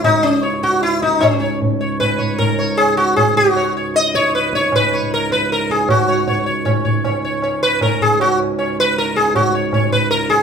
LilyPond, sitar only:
\new Staff \with { instrumentName = "Sitar" } { \time 3/4 \tempo 4 = 155 << { r4 cis''8 r4. | cis''8 cis''8 r8 cis''8 r8 cis''8 | r8 cis''8 r2 | cis''8 cis''8 r2 |
r8 cis''8 r2 | r8 cis''8 cis''8 cis''8 cis''8 cis''8 | cis''8 cis''8 cis''8 r4. | r4 cis''8 r4. |
r8 cis''8 cis''8 r4. | } \\ { dis'8 cis'8 r8 fis'8 e'8 dis'8 | cis'4. r8 b'4 | ais'4 gis'8 fis'8 gis'8 fis'8~ | fis'8 r8 dis''8 cis''8 b'8 cis''8 |
b'4 ais'8 b'8 ais'8 gis'8 | fis'4. r4. | r4. b'8 ais'8 gis'8 | fis'8 r4 b'8 ais'8 gis'8 |
fis'8 r4 b'8 ais'8 gis'8 | } >> }